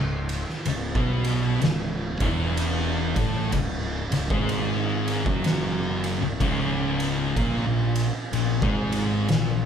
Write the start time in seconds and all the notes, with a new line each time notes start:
0.00 C#1 C#2
0.29 ride
0.49 snare
0.65 C#1 C#2, ride
0.95 B1 B2 B3, kick
1.24 ride
1.62 C#1 C#2, snare, ride
2.20 E1 E2 E3, kick, ride
2.57 ride
3.16 A1 A2 A3, kick, ride
3.52 C#1 C#2, kick, ride
4.12 C#1 C#2, ride
4.30 G#1 G#2 G#3, kick
4.49 ride
5.08 ride
5.26 F#1 F#2 F#3, kick
5.44 snare, ride
6.04 ride
6.22 C#1 C#2
6.40 C#1 C#2 C#3, kick, ride
7.00 ride
7.36 A#1 A#2 A#3, kick, ride
7.66 A#1 A#2
7.96 ride
8.32 A#1 A#2, ride
8.62 G#1 G#2 G#3, kick
8.92 ride
9.28 A#1 A#2, snare, ride